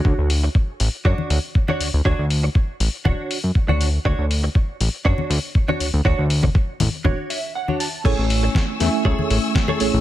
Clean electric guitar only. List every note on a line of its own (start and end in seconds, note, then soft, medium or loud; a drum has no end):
0.00 0.30 D4 medium
0.00 0.31 F#4 medium
0.00 0.31 C#5 medium
0.43 muted clean electric guitar stroke medium
0.55 muted clean electric guitar stroke soft
1.05 1.37 D4 medium
1.05 1.37 F#4 medium
1.05 1.37 C#5 medium
1.68 1.87 D4 medium
1.68 1.87 F#4 medium
1.68 1.87 C#5 medium
2.05 2.24 D4 loud
2.05 2.25 F#4 medium
2.05 2.25 C#5 loud
2.43 muted clean electric guitar stroke medium
2.55 muted clean electric guitar stroke soft
3.05 3.37 D4 medium
3.05 3.37 F#4 medium
3.05 3.37 C#5 medium
3.68 3.87 D4 medium
3.68 3.87 F#4 medium
3.68 3.87 C#5 medium
4.05 4.24 D4 loud
4.05 4.25 F#4 medium
4.05 4.25 C#5 loud
4.43 muted clean electric guitar stroke medium
4.55 muted clean electric guitar stroke soft
5.05 5.37 D4 medium
5.05 5.37 F#4 medium
5.05 5.37 C#5 loud
5.68 5.87 D4 medium
5.68 5.87 F#4 medium
5.68 5.87 C#5 medium
6.05 6.24 D4 loud
6.05 6.25 F#4 loud
6.05 6.25 C#5 loud
6.43 muted clean electric guitar stroke medium
6.55 muted clean electric guitar stroke soft
7.04 7.37 D4 medium
7.04 7.37 F#4 medium
7.04 7.37 C#5 medium
7.30 7.53 E5 medium
7.55 7.79 F#5 medium
7.68 7.87 D4 medium
7.68 7.87 F#4 medium
7.68 7.87 C#5 medium
7.80 8.03 A5 medium
8.05 8.24 G#4 medium
8.05 8.24 A4 medium
8.05 8.25 C#5 loud
8.43 muted clean electric guitar stroke medium
8.55 muted clean electric guitar stroke soft
9.05 9.37 G#4 medium
9.05 9.37 A4 medium
9.05 9.37 C#5 medium
9.68 9.87 G#4 medium
9.68 9.87 A4 medium
9.68 9.87 C#5 medium